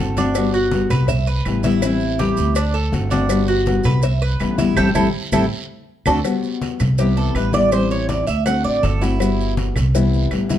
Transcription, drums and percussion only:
0.17 cowbell, high conga, short guiro, maracas
0.35 cowbell, high conga, long guiro, claves, maracas
0.53 high conga, maracas
0.71 cowbell, high conga, short guiro, maracas
0.90 cowbell, high conga, low conga, short guiro, claves, maracas
1.08 cowbell, high conga, low conga, long guiro, maracas
1.27 high conga, maracas
1.45 cowbell, high conga, short guiro, claves, maracas
1.63 cowbell, high conga, short guiro, maracas
1.82 cowbell, high conga, long guiro, claves, maracas
2.00 high conga, maracas
2.19 cowbell, high conga, short guiro, maracas
2.37 high conga, short guiro, maracas
2.55 cowbell, high conga, long guiro, claves, maracas
2.74 high conga, maracas
2.93 cowbell, high conga, short guiro, maracas
3.10 cowbell, high conga, short guiro, maracas
3.29 cowbell, high conga, long guiro, claves, maracas
3.48 high conga, maracas
3.66 cowbell, high conga, short guiro, maracas
3.84 cowbell, high conga, low conga, short guiro, claves, maracas
4.02 cowbell, high conga, long guiro, maracas
4.22 high conga, maracas
4.40 cowbell, high conga, short guiro, claves, maracas
4.58 cowbell, high conga, short guiro, maracas
4.76 cowbell, high conga, long guiro, claves, maracas
4.95 cowbell, high conga, long guiro, claves, maracas
5.32 cowbell, high conga, claves, maracas
6.06 cowbell, high conga, long guiro, claves, maracas
6.24 cowbell, high conga, long guiro, claves, maracas
6.43 high conga, maracas
6.62 cowbell, high conga, short guiro, maracas
6.80 cowbell, high conga, low conga, short guiro, claves, maracas
6.98 cowbell, high conga, long guiro, maracas
7.17 maracas
7.35 cowbell, high conga, short guiro, claves, maracas
7.53 cowbell, high conga, short guiro, maracas
7.72 cowbell, high conga, long guiro, claves, maracas
7.90 high conga, maracas
8.09 cowbell, high conga, short guiro, maracas
8.27 high conga, short guiro, maracas
8.46 cowbell, high conga, long guiro, claves, maracas
8.65 high conga, maracas
8.83 cowbell, high conga, short guiro, maracas
9.02 cowbell, short guiro, maracas
9.20 cowbell, high conga, long guiro, claves, maracas
9.39 high conga, maracas
9.57 cowbell, high conga, short guiro, maracas
9.76 cowbell, high conga, low conga, short guiro, claves, maracas
9.95 cowbell, high conga, long guiro, maracas
10.13 maracas
10.31 cowbell, high conga, short guiro, claves, maracas
10.49 cowbell, high conga, short guiro, maracas

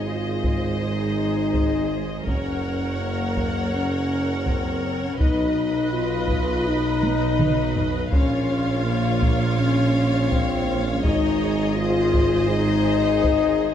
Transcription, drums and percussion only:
0.44 taiko
1.54 taiko
2.27 taiko
3.37 taiko
4.47 taiko
5.20 taiko
6.30 taiko
7.03 taiko high
7.39 taiko mid
7.76 taiko low
8.12 taiko
9.22 taiko
10.32 taiko
11.04 taiko
12.14 taiko
13.24 taiko

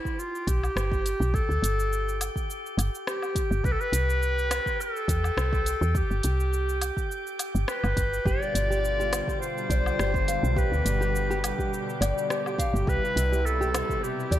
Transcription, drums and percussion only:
0.05 kick, shaker
0.20 shaker
0.35 shaker
0.47 kick, closed hi-hat, shaker
0.63 low woodblock, shaker
0.77 cross-stick, shaker
0.92 kick, shaker
1.06 closed hi-hat, shaker
1.22 shaker
1.34 kick, shaker
1.51 shaker
1.64 closed hi-hat, shaker
1.80 shaker
1.93 shaker
2.09 shaker
2.21 closed hi-hat, low woodblock, shaker
2.36 kick, shaker
2.50 shaker
2.66 shaker
2.79 closed hi-hat, low woodblock, shaker
2.95 shaker
3.07 cross-stick, shaker
3.22 low woodblock, shaker
3.35 kick, closed hi-hat, shaker
3.52 shaker
3.64 kick, shaker
3.81 shaker
3.93 closed hi-hat, shaker
4.10 shaker
4.23 shaker
4.39 shaker
4.51 cross-stick, closed hi-hat, low woodblock, shaker
4.66 kick, shaker
4.81 shaker
4.96 shaker
5.08 kick, closed hi-hat, shaker
5.24 low woodblock, shaker
5.38 cross-stick, shaker
5.53 kick, shaker
5.66 closed hi-hat, shaker
5.82 shaker
5.95 kick, shaker
6.11 shaker
6.23 closed hi-hat, shaker
6.40 shaker
6.53 shaker
6.69 shaker
6.82 closed hi-hat, low woodblock, shaker
6.97 kick, shaker
7.11 shaker
7.27 shaker
7.39 closed hi-hat, low woodblock, shaker
7.56 shaker
7.68 cross-stick, shaker
7.84 low woodblock, shaker
7.97 kick, closed hi-hat, shaker
8.14 shaker
8.26 kick, shaker
8.42 shaker
8.55 closed hi-hat, shaker
8.72 shaker
8.85 shaker
9.01 shaker
9.13 cross-stick, closed hi-hat, low woodblock, shaker
9.28 kick, shaker
9.43 shaker
9.58 shaker
9.70 kick, closed hi-hat, shaker
9.86 low woodblock, shaker
9.99 cross-stick, shaker
10.14 kick, shaker
10.28 closed hi-hat, shaker
10.45 shaker
10.56 kick, shaker
10.74 shaker
10.86 closed hi-hat, shaker
11.02 shaker
11.16 shaker
11.31 shaker
11.44 closed hi-hat, low woodblock, shaker
11.59 kick, shaker
11.74 shaker
11.89 shaker
12.02 closed hi-hat, low woodblock, shaker
12.18 shaker
12.30 cross-stick, shaker
12.46 low woodblock, shaker
12.58 kick, closed hi-hat, shaker
12.76 shaker
12.87 kick, shaker
13.05 shaker
13.17 closed hi-hat, shaker
13.33 shaker
13.47 shaker
13.62 shaker
13.74 cross-stick, closed hi-hat, low woodblock, shaker
13.89 kick, shaker
14.04 shaker
14.20 shaker
14.31 kick, closed hi-hat, shaker

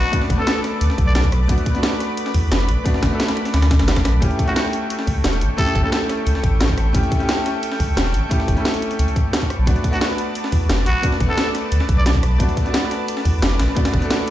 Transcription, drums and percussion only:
0.13 kick, closed hi-hat
0.22 snare
0.30 kick, closed hi-hat
0.47 snare, closed hi-hat
0.64 cross-stick, snare, closed hi-hat
0.81 closed hi-hat
0.90 snare
0.98 kick, closed hi-hat
1.15 snare, closed hi-hat
1.24 kick, snare, closed hi-hat
1.32 cross-stick, closed hi-hat
1.49 kick, closed hi-hat
1.58 closed hi-hat
1.66 kick, closed hi-hat
1.75 closed hi-hat
1.83 snare, closed hi-hat
1.92 snare
2.00 cross-stick, snare, closed hi-hat
2.17 closed hi-hat
2.26 snare
2.34 kick, closed hi-hat, open hi-hat
2.52 snare, closed hi-hat
2.60 snare, closed hi-hat
2.69 closed hi-hat
2.86 kick, closed hi-hat
2.94 snare
3.03 kick, snare, closed hi-hat
3.20 snare, closed hi-hat
3.28 snare, closed hi-hat
3.37 cross-stick, closed hi-hat
3.45 snare, closed hi-hat
3.54 snare, closed hi-hat
3.62 snare, closed hi-hat
3.71 kick, snare, closed hi-hat
3.79 snare, closed hi-hat
3.88 snare, closed hi-hat
3.96 kick, cross-stick, snare, closed hi-hat
4.05 cross-stick, snare, closed hi-hat
4.22 kick, closed hi-hat
4.31 closed hi-hat
4.39 kick, closed hi-hat
4.48 closed hi-hat
4.56 snare, closed hi-hat
4.65 snare
4.73 closed hi-hat
4.90 closed hi-hat
4.99 snare
5.07 kick, closed hi-hat, open hi-hat
5.24 snare, closed hi-hat
5.33 snare, closed hi-hat
5.41 closed hi-hat
5.58 kick, closed hi-hat
5.67 snare
5.75 kick, closed hi-hat
5.92 snare, closed hi-hat
6.09 cross-stick, snare, closed hi-hat
6.27 closed hi-hat
6.35 snare
6.44 kick, closed hi-hat
6.61 snare, closed hi-hat
6.69 kick, snare, closed hi-hat
6.78 cross-stick, closed hi-hat
6.95 kick, closed hi-hat
7.03 closed hi-hat
7.12 kick, closed hi-hat
7.20 closed hi-hat
7.29 snare, closed hi-hat
7.37 snare
7.46 cross-stick, snare, closed hi-hat
7.63 closed hi-hat
7.72 snare
7.80 kick, closed hi-hat, open hi-hat
7.97 snare, closed hi-hat
8.06 snare, closed hi-hat
8.14 closed hi-hat
8.31 kick, closed hi-hat
8.40 snare
8.48 kick, closed hi-hat
8.57 closed hi-hat
8.65 snare, closed hi-hat
8.74 closed hi-hat
8.82 closed hi-hat
8.91 closed hi-hat
8.99 closed hi-hat
9.08 closed hi-hat
9.16 kick, closed hi-hat
9.33 snare, closed hi-hat
9.42 kick, snare, closed hi-hat
9.50 cross-stick, closed hi-hat
9.67 kick, closed hi-hat
9.76 closed hi-hat
9.84 kick, closed hi-hat
9.93 closed hi-hat
10.01 snare, closed hi-hat
10.10 snare
10.18 closed hi-hat
10.35 closed hi-hat
10.44 snare
10.52 kick, closed hi-hat, open hi-hat
10.70 snare, closed hi-hat
10.78 snare, closed hi-hat
10.86 closed hi-hat
11.03 kick, closed hi-hat
11.12 snare
11.20 kick, closed hi-hat
11.38 snare, closed hi-hat
11.55 cross-stick, snare, closed hi-hat
11.72 closed hi-hat
11.80 snare
11.89 kick, closed hi-hat
12.06 snare, closed hi-hat
12.15 kick, snare, closed hi-hat
12.23 cross-stick, closed hi-hat
12.40 kick, closed hi-hat
12.49 closed hi-hat
12.57 kick, closed hi-hat
12.66 closed hi-hat
12.74 snare, closed hi-hat
12.83 snare
12.91 cross-stick, snare, closed hi-hat
13.08 closed hi-hat
13.17 snare
13.25 kick, closed hi-hat, open hi-hat
13.42 snare, closed hi-hat
13.51 snare, closed hi-hat
13.60 snare, closed hi-hat
13.68 snare
13.76 kick, closed hi-hat
13.85 snare, closed hi-hat
13.94 kick, snare, closed hi-hat
14.02 closed hi-hat
14.10 snare, closed hi-hat
14.19 snare

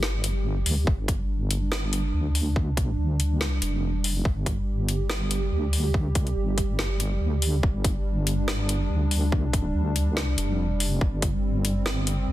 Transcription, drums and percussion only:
0.03 snare
0.24 closed hi-hat
0.66 open hi-hat
0.87 kick
1.08 kick, closed hi-hat
1.51 closed hi-hat
1.72 snare
1.93 closed hi-hat
2.35 open hi-hat
2.56 kick
2.77 kick, closed hi-hat
3.20 closed hi-hat
3.41 snare
3.62 closed hi-hat
4.04 open hi-hat
4.25 kick
4.46 kick, closed hi-hat
4.89 closed hi-hat
5.10 snare
5.31 closed hi-hat
5.73 open hi-hat
5.94 kick
6.15 kick, closed hi-hat
6.27 closed hi-hat
6.58 kick, closed hi-hat
6.79 snare
7.00 closed hi-hat
7.42 open hi-hat
7.63 kick
7.84 kick, closed hi-hat
8.27 closed hi-hat
8.48 snare
8.69 closed hi-hat
9.11 open hi-hat
9.32 kick
9.53 kick, closed hi-hat
9.96 closed hi-hat
10.17 snare
10.38 closed hi-hat
10.80 open hi-hat
11.01 kick
11.22 kick, closed hi-hat
11.65 closed hi-hat
11.86 snare
12.07 closed hi-hat

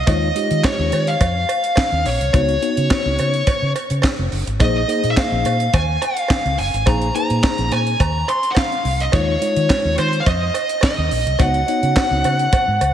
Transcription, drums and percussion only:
0.07 kick, closed hi-hat, cowbell
0.36 closed hi-hat
0.51 closed hi-hat
0.64 kick, snare, clap, closed hi-hat, cowbell
0.92 closed hi-hat, cowbell
1.07 closed hi-hat
1.21 kick, closed hi-hat, cowbell
1.49 closed hi-hat, cowbell
1.64 closed hi-hat
1.76 kick, snare, clap, closed hi-hat, cowbell
2.06 open hi-hat
2.21 closed hi-hat
2.33 kick, closed hi-hat, cowbell
2.49 closed hi-hat
2.62 closed hi-hat
2.77 closed hi-hat
2.90 kick, snare, clap, closed hi-hat, cowbell
3.19 closed hi-hat, cowbell
3.34 closed hi-hat
3.47 kick, closed hi-hat, cowbell
3.76 closed hi-hat, cowbell
3.90 closed hi-hat
4.02 kick, snare, clap, closed hi-hat, cowbell
4.32 open hi-hat
4.47 closed hi-hat
4.60 kick, closed hi-hat, cowbell
4.89 closed hi-hat
5.04 closed hi-hat
5.17 kick, snare, clap, closed hi-hat, cowbell
5.45 closed hi-hat, cowbell
5.60 closed hi-hat
5.74 kick, closed hi-hat, cowbell
6.02 closed hi-hat, cowbell
6.17 closed hi-hat
6.28 kick, snare, clap, closed hi-hat, cowbell
6.46 closed hi-hat
6.59 open hi-hat
6.74 closed hi-hat
6.86 kick, closed hi-hat, cowbell
7.02 closed hi-hat
7.15 closed hi-hat
7.30 closed hi-hat
7.43 kick, snare, clap, closed hi-hat, cowbell
7.58 closed hi-hat
7.72 closed hi-hat, cowbell
7.87 closed hi-hat
8.00 kick, closed hi-hat, cowbell
8.28 closed hi-hat, cowbell
8.43 closed hi-hat
8.55 kick, snare, clap, closed hi-hat, cowbell
8.72 closed hi-hat
8.85 open hi-hat
9.00 closed hi-hat
9.12 kick, closed hi-hat, cowbell
9.42 closed hi-hat
9.56 closed hi-hat
9.70 kick, snare, clap, closed hi-hat, cowbell
9.98 closed hi-hat, cowbell
10.13 closed hi-hat
10.26 kick, closed hi-hat, cowbell
10.54 closed hi-hat, cowbell
10.69 closed hi-hat
10.81 kick, snare, clap, closed hi-hat, cowbell
11.11 open hi-hat
11.27 closed hi-hat
11.39 kick, closed hi-hat, cowbell
11.54 closed hi-hat
11.68 closed hi-hat
11.83 closed hi-hat
11.96 kick, snare, clap, closed hi-hat, cowbell
12.24 closed hi-hat, cowbell
12.39 closed hi-hat
12.53 kick, closed hi-hat, cowbell
12.81 closed hi-hat, cowbell

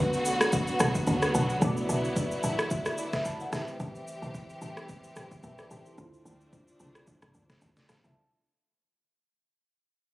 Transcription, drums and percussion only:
0.13 shaker
0.25 shaker
0.41 cross-stick, shaker
0.52 kick, shaker
0.68 shaker
0.80 cross-stick, shaker
0.95 kick, shaker
1.07 kick, shaker
1.22 cross-stick, shaker
1.35 shaker
1.50 shaker
1.62 kick, shaker
1.77 shaker
1.89 shaker
2.04 shaker
2.16 kick, shaker
2.32 shaker
2.43 shaker
2.59 cross-stick, shaker
2.71 kick, shaker
2.86 cross-stick, shaker
2.98 shaker
3.13 kick, cross-stick, snare, shaker
3.25 kick, shaker
3.40 shaker
3.53 cross-stick, snare, shaker
3.68 shaker
3.80 kick, shaker
3.95 shaker
4.08 shaker
4.23 shaker
4.35 kick, shaker
4.50 shaker
4.62 shaker
4.77 cross-stick, shaker
4.89 kick, shaker
5.04 shaker
5.16 cross-stick, shaker
5.31 kick, shaker
5.43 kick, shaker
5.58 cross-stick, shaker
5.71 shaker
5.86 shaker
5.98 kick, shaker
6.14 shaker
6.26 shaker
6.41 shaker
6.53 kick, shaker
6.68 shaker
6.80 shaker
6.95 cross-stick, shaker
7.07 kick, shaker
7.22 cross-stick, mid tom, shaker
7.34 shaker
7.50 kick, cross-stick, snare, shaker
7.61 kick, shaker
7.76 snare, shaker
7.89 cross-stick, snare, shaker
8.04 shaker

